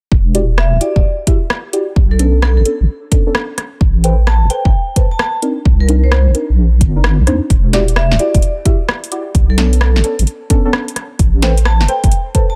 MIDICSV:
0, 0, Header, 1, 5, 480
1, 0, Start_track
1, 0, Key_signature, 1, "minor"
1, 0, Tempo, 461538
1, 122, Time_signature, 4, 2, 24, 8
1, 13057, End_track
2, 0, Start_track
2, 0, Title_t, "Vibraphone"
2, 0, Program_c, 0, 11
2, 600, Note_on_c, 0, 76, 78
2, 766, Note_off_c, 0, 76, 0
2, 840, Note_on_c, 0, 74, 80
2, 942, Note_off_c, 0, 74, 0
2, 998, Note_on_c, 0, 74, 70
2, 1051, Note_off_c, 0, 74, 0
2, 2197, Note_on_c, 0, 69, 81
2, 2251, Note_off_c, 0, 69, 0
2, 2279, Note_on_c, 0, 69, 68
2, 2381, Note_off_c, 0, 69, 0
2, 2521, Note_on_c, 0, 69, 77
2, 2622, Note_off_c, 0, 69, 0
2, 2676, Note_on_c, 0, 69, 68
2, 2730, Note_off_c, 0, 69, 0
2, 4440, Note_on_c, 0, 81, 81
2, 4606, Note_off_c, 0, 81, 0
2, 4681, Note_on_c, 0, 79, 82
2, 4782, Note_off_c, 0, 79, 0
2, 4837, Note_on_c, 0, 79, 69
2, 4891, Note_off_c, 0, 79, 0
2, 5319, Note_on_c, 0, 81, 83
2, 5372, Note_off_c, 0, 81, 0
2, 5400, Note_on_c, 0, 81, 69
2, 5502, Note_off_c, 0, 81, 0
2, 6037, Note_on_c, 0, 70, 79
2, 6091, Note_off_c, 0, 70, 0
2, 6119, Note_on_c, 0, 70, 68
2, 6221, Note_off_c, 0, 70, 0
2, 6278, Note_on_c, 0, 72, 80
2, 6331, Note_off_c, 0, 72, 0
2, 6361, Note_on_c, 0, 72, 68
2, 6462, Note_off_c, 0, 72, 0
2, 8281, Note_on_c, 0, 76, 82
2, 8447, Note_off_c, 0, 76, 0
2, 8522, Note_on_c, 0, 74, 84
2, 8623, Note_off_c, 0, 74, 0
2, 8680, Note_on_c, 0, 74, 71
2, 8732, Note_off_c, 0, 74, 0
2, 9879, Note_on_c, 0, 69, 79
2, 9932, Note_off_c, 0, 69, 0
2, 9961, Note_on_c, 0, 69, 70
2, 10062, Note_off_c, 0, 69, 0
2, 10201, Note_on_c, 0, 69, 79
2, 10302, Note_off_c, 0, 69, 0
2, 10358, Note_on_c, 0, 69, 67
2, 10411, Note_off_c, 0, 69, 0
2, 12120, Note_on_c, 0, 81, 85
2, 12287, Note_off_c, 0, 81, 0
2, 12361, Note_on_c, 0, 79, 80
2, 12462, Note_off_c, 0, 79, 0
2, 12519, Note_on_c, 0, 79, 72
2, 12572, Note_off_c, 0, 79, 0
2, 12998, Note_on_c, 0, 81, 87
2, 13051, Note_off_c, 0, 81, 0
2, 13057, End_track
3, 0, Start_track
3, 0, Title_t, "Synth stab"
3, 0, Program_c, 1, 62
3, 360, Note_on_c, 1, 64, 88
3, 360, Note_on_c, 1, 66, 79
3, 360, Note_on_c, 1, 67, 80
3, 360, Note_on_c, 1, 74, 96
3, 473, Note_off_c, 1, 64, 0
3, 473, Note_off_c, 1, 66, 0
3, 473, Note_off_c, 1, 67, 0
3, 473, Note_off_c, 1, 74, 0
3, 840, Note_on_c, 1, 66, 76
3, 840, Note_on_c, 1, 67, 75
3, 840, Note_on_c, 1, 74, 93
3, 841, Note_on_c, 1, 64, 80
3, 1010, Note_off_c, 1, 64, 0
3, 1010, Note_off_c, 1, 66, 0
3, 1010, Note_off_c, 1, 67, 0
3, 1010, Note_off_c, 1, 74, 0
3, 1322, Note_on_c, 1, 64, 72
3, 1322, Note_on_c, 1, 66, 66
3, 1322, Note_on_c, 1, 67, 67
3, 1322, Note_on_c, 1, 76, 78
3, 1434, Note_off_c, 1, 64, 0
3, 1434, Note_off_c, 1, 66, 0
3, 1434, Note_off_c, 1, 67, 0
3, 1434, Note_off_c, 1, 76, 0
3, 1801, Note_on_c, 1, 64, 79
3, 1801, Note_on_c, 1, 66, 71
3, 1801, Note_on_c, 1, 67, 74
3, 1801, Note_on_c, 1, 74, 86
3, 1914, Note_off_c, 1, 64, 0
3, 1914, Note_off_c, 1, 66, 0
3, 1914, Note_off_c, 1, 67, 0
3, 1914, Note_off_c, 1, 74, 0
3, 2281, Note_on_c, 1, 61, 75
3, 2281, Note_on_c, 1, 62, 75
3, 2282, Note_on_c, 1, 59, 86
3, 2282, Note_on_c, 1, 69, 92
3, 2742, Note_off_c, 1, 59, 0
3, 2742, Note_off_c, 1, 61, 0
3, 2742, Note_off_c, 1, 62, 0
3, 2742, Note_off_c, 1, 69, 0
3, 2761, Note_on_c, 1, 61, 65
3, 2761, Note_on_c, 1, 69, 80
3, 2762, Note_on_c, 1, 59, 71
3, 2762, Note_on_c, 1, 62, 63
3, 2874, Note_off_c, 1, 59, 0
3, 2874, Note_off_c, 1, 61, 0
3, 2874, Note_off_c, 1, 62, 0
3, 2874, Note_off_c, 1, 69, 0
3, 3240, Note_on_c, 1, 59, 78
3, 3240, Note_on_c, 1, 61, 71
3, 3240, Note_on_c, 1, 62, 71
3, 3240, Note_on_c, 1, 69, 89
3, 3361, Note_off_c, 1, 59, 0
3, 3361, Note_off_c, 1, 61, 0
3, 3361, Note_off_c, 1, 62, 0
3, 3361, Note_off_c, 1, 69, 0
3, 3397, Note_on_c, 1, 61, 83
3, 3398, Note_on_c, 1, 59, 95
3, 3398, Note_on_c, 1, 62, 84
3, 3398, Note_on_c, 1, 69, 101
3, 3457, Note_off_c, 1, 59, 0
3, 3457, Note_off_c, 1, 61, 0
3, 3457, Note_off_c, 1, 62, 0
3, 3457, Note_off_c, 1, 69, 0
3, 4200, Note_on_c, 1, 69, 91
3, 4200, Note_on_c, 1, 71, 84
3, 4200, Note_on_c, 1, 72, 79
3, 4200, Note_on_c, 1, 79, 95
3, 4313, Note_off_c, 1, 69, 0
3, 4313, Note_off_c, 1, 71, 0
3, 4313, Note_off_c, 1, 72, 0
3, 4313, Note_off_c, 1, 79, 0
3, 4680, Note_on_c, 1, 69, 82
3, 4680, Note_on_c, 1, 71, 76
3, 4681, Note_on_c, 1, 72, 75
3, 4681, Note_on_c, 1, 79, 90
3, 4850, Note_off_c, 1, 69, 0
3, 4850, Note_off_c, 1, 71, 0
3, 4850, Note_off_c, 1, 72, 0
3, 4850, Note_off_c, 1, 79, 0
3, 5161, Note_on_c, 1, 69, 73
3, 5161, Note_on_c, 1, 71, 65
3, 5161, Note_on_c, 1, 72, 66
3, 5161, Note_on_c, 1, 81, 78
3, 5274, Note_off_c, 1, 69, 0
3, 5274, Note_off_c, 1, 71, 0
3, 5274, Note_off_c, 1, 72, 0
3, 5274, Note_off_c, 1, 81, 0
3, 5640, Note_on_c, 1, 60, 79
3, 5640, Note_on_c, 1, 62, 72
3, 5640, Note_on_c, 1, 63, 74
3, 5640, Note_on_c, 1, 70, 88
3, 5753, Note_off_c, 1, 60, 0
3, 5753, Note_off_c, 1, 63, 0
3, 5754, Note_off_c, 1, 62, 0
3, 5754, Note_off_c, 1, 70, 0
3, 6121, Note_on_c, 1, 60, 86
3, 6121, Note_on_c, 1, 62, 77
3, 6121, Note_on_c, 1, 63, 79
3, 6121, Note_on_c, 1, 70, 93
3, 6581, Note_off_c, 1, 60, 0
3, 6581, Note_off_c, 1, 62, 0
3, 6581, Note_off_c, 1, 63, 0
3, 6582, Note_off_c, 1, 70, 0
3, 6601, Note_on_c, 1, 62, 63
3, 6601, Note_on_c, 1, 63, 65
3, 6601, Note_on_c, 1, 70, 77
3, 6602, Note_on_c, 1, 60, 70
3, 6714, Note_off_c, 1, 60, 0
3, 6714, Note_off_c, 1, 62, 0
3, 6714, Note_off_c, 1, 63, 0
3, 6714, Note_off_c, 1, 70, 0
3, 7239, Note_on_c, 1, 62, 73
3, 7240, Note_on_c, 1, 60, 81
3, 7240, Note_on_c, 1, 63, 74
3, 7240, Note_on_c, 1, 70, 89
3, 7298, Note_off_c, 1, 60, 0
3, 7298, Note_off_c, 1, 62, 0
3, 7298, Note_off_c, 1, 63, 0
3, 7298, Note_off_c, 1, 70, 0
3, 7561, Note_on_c, 1, 60, 82
3, 7561, Note_on_c, 1, 62, 71
3, 7561, Note_on_c, 1, 63, 72
3, 7561, Note_on_c, 1, 72, 87
3, 7674, Note_off_c, 1, 60, 0
3, 7674, Note_off_c, 1, 62, 0
3, 7674, Note_off_c, 1, 63, 0
3, 7674, Note_off_c, 1, 72, 0
3, 8041, Note_on_c, 1, 64, 87
3, 8041, Note_on_c, 1, 74, 100
3, 8042, Note_on_c, 1, 66, 81
3, 8042, Note_on_c, 1, 67, 81
3, 8154, Note_off_c, 1, 64, 0
3, 8154, Note_off_c, 1, 66, 0
3, 8154, Note_off_c, 1, 67, 0
3, 8154, Note_off_c, 1, 74, 0
3, 8522, Note_on_c, 1, 64, 81
3, 8522, Note_on_c, 1, 66, 77
3, 8522, Note_on_c, 1, 67, 77
3, 8522, Note_on_c, 1, 74, 94
3, 8691, Note_off_c, 1, 64, 0
3, 8691, Note_off_c, 1, 66, 0
3, 8691, Note_off_c, 1, 67, 0
3, 8691, Note_off_c, 1, 74, 0
3, 9001, Note_on_c, 1, 66, 67
3, 9001, Note_on_c, 1, 67, 68
3, 9001, Note_on_c, 1, 76, 81
3, 9002, Note_on_c, 1, 64, 74
3, 9114, Note_off_c, 1, 64, 0
3, 9114, Note_off_c, 1, 66, 0
3, 9114, Note_off_c, 1, 67, 0
3, 9114, Note_off_c, 1, 76, 0
3, 9480, Note_on_c, 1, 67, 73
3, 9481, Note_on_c, 1, 64, 80
3, 9481, Note_on_c, 1, 66, 74
3, 9481, Note_on_c, 1, 74, 88
3, 9594, Note_off_c, 1, 64, 0
3, 9594, Note_off_c, 1, 66, 0
3, 9594, Note_off_c, 1, 67, 0
3, 9594, Note_off_c, 1, 74, 0
3, 9960, Note_on_c, 1, 59, 83
3, 9960, Note_on_c, 1, 61, 78
3, 9960, Note_on_c, 1, 62, 77
3, 9960, Note_on_c, 1, 69, 91
3, 10421, Note_off_c, 1, 59, 0
3, 10421, Note_off_c, 1, 61, 0
3, 10421, Note_off_c, 1, 62, 0
3, 10421, Note_off_c, 1, 69, 0
3, 10441, Note_on_c, 1, 59, 71
3, 10441, Note_on_c, 1, 61, 64
3, 10441, Note_on_c, 1, 62, 67
3, 10441, Note_on_c, 1, 69, 80
3, 10554, Note_off_c, 1, 59, 0
3, 10554, Note_off_c, 1, 61, 0
3, 10554, Note_off_c, 1, 62, 0
3, 10554, Note_off_c, 1, 69, 0
3, 10920, Note_on_c, 1, 59, 79
3, 10920, Note_on_c, 1, 61, 76
3, 10920, Note_on_c, 1, 62, 72
3, 10920, Note_on_c, 1, 69, 90
3, 11041, Note_off_c, 1, 59, 0
3, 11041, Note_off_c, 1, 61, 0
3, 11041, Note_off_c, 1, 62, 0
3, 11041, Note_off_c, 1, 69, 0
3, 11078, Note_on_c, 1, 59, 95
3, 11078, Note_on_c, 1, 61, 87
3, 11078, Note_on_c, 1, 62, 86
3, 11078, Note_on_c, 1, 69, 106
3, 11137, Note_off_c, 1, 59, 0
3, 11137, Note_off_c, 1, 61, 0
3, 11137, Note_off_c, 1, 62, 0
3, 11138, Note_off_c, 1, 69, 0
3, 11881, Note_on_c, 1, 69, 87
3, 11881, Note_on_c, 1, 71, 84
3, 11881, Note_on_c, 1, 72, 82
3, 11881, Note_on_c, 1, 79, 101
3, 11994, Note_off_c, 1, 69, 0
3, 11994, Note_off_c, 1, 71, 0
3, 11994, Note_off_c, 1, 72, 0
3, 11994, Note_off_c, 1, 79, 0
3, 12361, Note_on_c, 1, 69, 83
3, 12361, Note_on_c, 1, 71, 75
3, 12361, Note_on_c, 1, 72, 76
3, 12361, Note_on_c, 1, 79, 93
3, 12530, Note_off_c, 1, 72, 0
3, 12531, Note_off_c, 1, 69, 0
3, 12531, Note_off_c, 1, 71, 0
3, 12531, Note_off_c, 1, 79, 0
3, 12840, Note_on_c, 1, 81, 80
3, 12841, Note_on_c, 1, 69, 73
3, 12841, Note_on_c, 1, 71, 69
3, 12841, Note_on_c, 1, 72, 68
3, 12954, Note_off_c, 1, 69, 0
3, 12954, Note_off_c, 1, 71, 0
3, 12954, Note_off_c, 1, 72, 0
3, 12954, Note_off_c, 1, 81, 0
3, 13057, End_track
4, 0, Start_track
4, 0, Title_t, "Wobble bass"
4, 0, Program_c, 2, 39
4, 120, Note_on_c, 2, 28, 94
4, 758, Note_on_c, 2, 26, 75
4, 774, Note_off_c, 2, 28, 0
4, 828, Note_off_c, 2, 26, 0
4, 998, Note_on_c, 2, 26, 85
4, 1068, Note_off_c, 2, 26, 0
4, 2041, Note_on_c, 2, 35, 92
4, 2679, Note_on_c, 2, 33, 75
4, 2694, Note_off_c, 2, 35, 0
4, 2748, Note_off_c, 2, 33, 0
4, 2918, Note_on_c, 2, 33, 86
4, 2988, Note_off_c, 2, 33, 0
4, 3960, Note_on_c, 2, 33, 94
4, 4599, Note_on_c, 2, 31, 78
4, 4614, Note_off_c, 2, 33, 0
4, 4668, Note_off_c, 2, 31, 0
4, 4838, Note_on_c, 2, 31, 83
4, 4908, Note_off_c, 2, 31, 0
4, 5881, Note_on_c, 2, 36, 92
4, 6519, Note_on_c, 2, 34, 76
4, 6534, Note_off_c, 2, 36, 0
4, 6588, Note_off_c, 2, 34, 0
4, 6758, Note_on_c, 2, 34, 84
4, 7081, Note_on_c, 2, 31, 99
4, 7097, Note_off_c, 2, 34, 0
4, 7479, Note_on_c, 2, 36, 98
4, 7494, Note_off_c, 2, 31, 0
4, 7548, Note_off_c, 2, 36, 0
4, 7561, Note_on_c, 2, 39, 84
4, 7694, Note_off_c, 2, 39, 0
4, 7801, Note_on_c, 2, 28, 97
4, 8440, Note_on_c, 2, 26, 77
4, 8455, Note_off_c, 2, 28, 0
4, 8509, Note_off_c, 2, 26, 0
4, 8679, Note_on_c, 2, 26, 86
4, 8748, Note_off_c, 2, 26, 0
4, 9721, Note_on_c, 2, 35, 97
4, 10358, Note_on_c, 2, 33, 76
4, 10374, Note_off_c, 2, 35, 0
4, 10428, Note_off_c, 2, 33, 0
4, 10598, Note_on_c, 2, 33, 86
4, 10668, Note_off_c, 2, 33, 0
4, 11641, Note_on_c, 2, 33, 98
4, 12278, Note_on_c, 2, 31, 74
4, 12293, Note_off_c, 2, 33, 0
4, 12348, Note_off_c, 2, 31, 0
4, 12518, Note_on_c, 2, 31, 86
4, 12588, Note_off_c, 2, 31, 0
4, 13057, End_track
5, 0, Start_track
5, 0, Title_t, "Drums"
5, 120, Note_on_c, 9, 36, 107
5, 224, Note_off_c, 9, 36, 0
5, 361, Note_on_c, 9, 42, 100
5, 465, Note_off_c, 9, 42, 0
5, 601, Note_on_c, 9, 37, 108
5, 705, Note_off_c, 9, 37, 0
5, 841, Note_on_c, 9, 42, 85
5, 945, Note_off_c, 9, 42, 0
5, 998, Note_on_c, 9, 36, 96
5, 1102, Note_off_c, 9, 36, 0
5, 1321, Note_on_c, 9, 36, 91
5, 1321, Note_on_c, 9, 42, 100
5, 1425, Note_off_c, 9, 36, 0
5, 1425, Note_off_c, 9, 42, 0
5, 1561, Note_on_c, 9, 37, 107
5, 1665, Note_off_c, 9, 37, 0
5, 1802, Note_on_c, 9, 42, 86
5, 1906, Note_off_c, 9, 42, 0
5, 2041, Note_on_c, 9, 36, 118
5, 2145, Note_off_c, 9, 36, 0
5, 2281, Note_on_c, 9, 42, 95
5, 2385, Note_off_c, 9, 42, 0
5, 2521, Note_on_c, 9, 37, 112
5, 2625, Note_off_c, 9, 37, 0
5, 2761, Note_on_c, 9, 42, 80
5, 2865, Note_off_c, 9, 42, 0
5, 3241, Note_on_c, 9, 36, 97
5, 3241, Note_on_c, 9, 42, 97
5, 3345, Note_off_c, 9, 36, 0
5, 3345, Note_off_c, 9, 42, 0
5, 3481, Note_on_c, 9, 37, 115
5, 3585, Note_off_c, 9, 37, 0
5, 3721, Note_on_c, 9, 37, 59
5, 3721, Note_on_c, 9, 42, 85
5, 3825, Note_off_c, 9, 37, 0
5, 3825, Note_off_c, 9, 42, 0
5, 3960, Note_on_c, 9, 36, 120
5, 4064, Note_off_c, 9, 36, 0
5, 4200, Note_on_c, 9, 42, 95
5, 4304, Note_off_c, 9, 42, 0
5, 4440, Note_on_c, 9, 37, 111
5, 4544, Note_off_c, 9, 37, 0
5, 4680, Note_on_c, 9, 42, 81
5, 4784, Note_off_c, 9, 42, 0
5, 4838, Note_on_c, 9, 36, 103
5, 4942, Note_off_c, 9, 36, 0
5, 5160, Note_on_c, 9, 36, 98
5, 5160, Note_on_c, 9, 42, 92
5, 5264, Note_off_c, 9, 36, 0
5, 5264, Note_off_c, 9, 42, 0
5, 5401, Note_on_c, 9, 37, 114
5, 5505, Note_off_c, 9, 37, 0
5, 5641, Note_on_c, 9, 42, 84
5, 5745, Note_off_c, 9, 42, 0
5, 5881, Note_on_c, 9, 36, 114
5, 5985, Note_off_c, 9, 36, 0
5, 6121, Note_on_c, 9, 42, 91
5, 6225, Note_off_c, 9, 42, 0
5, 6360, Note_on_c, 9, 37, 116
5, 6464, Note_off_c, 9, 37, 0
5, 6601, Note_on_c, 9, 42, 78
5, 6705, Note_off_c, 9, 42, 0
5, 7081, Note_on_c, 9, 36, 98
5, 7081, Note_on_c, 9, 42, 90
5, 7185, Note_off_c, 9, 36, 0
5, 7185, Note_off_c, 9, 42, 0
5, 7321, Note_on_c, 9, 37, 116
5, 7425, Note_off_c, 9, 37, 0
5, 7562, Note_on_c, 9, 37, 58
5, 7562, Note_on_c, 9, 42, 82
5, 7666, Note_off_c, 9, 37, 0
5, 7666, Note_off_c, 9, 42, 0
5, 7801, Note_on_c, 9, 36, 112
5, 7802, Note_on_c, 9, 42, 62
5, 7905, Note_off_c, 9, 36, 0
5, 7906, Note_off_c, 9, 42, 0
5, 8042, Note_on_c, 9, 38, 58
5, 8042, Note_on_c, 9, 42, 95
5, 8146, Note_off_c, 9, 38, 0
5, 8146, Note_off_c, 9, 42, 0
5, 8198, Note_on_c, 9, 42, 57
5, 8280, Note_on_c, 9, 37, 110
5, 8302, Note_off_c, 9, 42, 0
5, 8384, Note_off_c, 9, 37, 0
5, 8439, Note_on_c, 9, 38, 45
5, 8521, Note_on_c, 9, 42, 79
5, 8543, Note_off_c, 9, 38, 0
5, 8625, Note_off_c, 9, 42, 0
5, 8679, Note_on_c, 9, 36, 100
5, 8679, Note_on_c, 9, 42, 60
5, 8761, Note_off_c, 9, 42, 0
5, 8761, Note_on_c, 9, 42, 61
5, 8783, Note_off_c, 9, 36, 0
5, 8865, Note_off_c, 9, 42, 0
5, 9001, Note_on_c, 9, 36, 94
5, 9001, Note_on_c, 9, 42, 93
5, 9105, Note_off_c, 9, 36, 0
5, 9105, Note_off_c, 9, 42, 0
5, 9241, Note_on_c, 9, 37, 113
5, 9345, Note_off_c, 9, 37, 0
5, 9398, Note_on_c, 9, 42, 50
5, 9481, Note_off_c, 9, 42, 0
5, 9481, Note_on_c, 9, 42, 82
5, 9585, Note_off_c, 9, 42, 0
5, 9721, Note_on_c, 9, 36, 109
5, 9721, Note_on_c, 9, 42, 62
5, 9825, Note_off_c, 9, 36, 0
5, 9825, Note_off_c, 9, 42, 0
5, 9961, Note_on_c, 9, 38, 59
5, 9961, Note_on_c, 9, 42, 97
5, 10065, Note_off_c, 9, 38, 0
5, 10065, Note_off_c, 9, 42, 0
5, 10118, Note_on_c, 9, 42, 62
5, 10201, Note_on_c, 9, 37, 104
5, 10222, Note_off_c, 9, 42, 0
5, 10305, Note_off_c, 9, 37, 0
5, 10359, Note_on_c, 9, 38, 44
5, 10441, Note_on_c, 9, 42, 82
5, 10463, Note_off_c, 9, 38, 0
5, 10545, Note_off_c, 9, 42, 0
5, 10599, Note_on_c, 9, 42, 65
5, 10681, Note_off_c, 9, 42, 0
5, 10681, Note_on_c, 9, 42, 64
5, 10785, Note_off_c, 9, 42, 0
5, 10920, Note_on_c, 9, 42, 96
5, 10921, Note_on_c, 9, 36, 91
5, 11024, Note_off_c, 9, 42, 0
5, 11025, Note_off_c, 9, 36, 0
5, 11160, Note_on_c, 9, 37, 106
5, 11264, Note_off_c, 9, 37, 0
5, 11318, Note_on_c, 9, 42, 52
5, 11400, Note_off_c, 9, 42, 0
5, 11400, Note_on_c, 9, 37, 55
5, 11400, Note_on_c, 9, 42, 85
5, 11504, Note_off_c, 9, 37, 0
5, 11504, Note_off_c, 9, 42, 0
5, 11640, Note_on_c, 9, 42, 64
5, 11641, Note_on_c, 9, 36, 110
5, 11744, Note_off_c, 9, 42, 0
5, 11745, Note_off_c, 9, 36, 0
5, 11881, Note_on_c, 9, 38, 59
5, 11881, Note_on_c, 9, 42, 97
5, 11985, Note_off_c, 9, 38, 0
5, 11985, Note_off_c, 9, 42, 0
5, 12038, Note_on_c, 9, 42, 62
5, 12120, Note_on_c, 9, 37, 103
5, 12142, Note_off_c, 9, 42, 0
5, 12224, Note_off_c, 9, 37, 0
5, 12278, Note_on_c, 9, 38, 46
5, 12360, Note_on_c, 9, 42, 84
5, 12382, Note_off_c, 9, 38, 0
5, 12464, Note_off_c, 9, 42, 0
5, 12518, Note_on_c, 9, 36, 92
5, 12518, Note_on_c, 9, 42, 64
5, 12600, Note_off_c, 9, 42, 0
5, 12600, Note_on_c, 9, 42, 67
5, 12622, Note_off_c, 9, 36, 0
5, 12704, Note_off_c, 9, 42, 0
5, 12840, Note_on_c, 9, 36, 89
5, 12840, Note_on_c, 9, 42, 103
5, 12944, Note_off_c, 9, 36, 0
5, 12944, Note_off_c, 9, 42, 0
5, 13057, End_track
0, 0, End_of_file